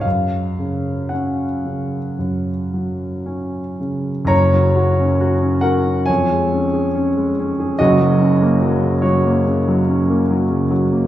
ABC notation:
X:1
M:4/4
L:1/16
Q:1/4=68
K:F#
V:1 name="Grand piano"
e4 f8- f2 z2 | [ca]6 [Af]2 [cg]8 | [Fd]6 [Fc]8 z2 |]
V:2 name="Grand piano" clef=bass
F,,2 C,2 C2 C,2 F,,2 F,2 C2 C,2 | [F,,,F,,] F, F C F C F C E,, G, C G C G, C G | [F,,,F,,] F, C A, F, C, F, A, C, F, C A, F, C, F, A, |]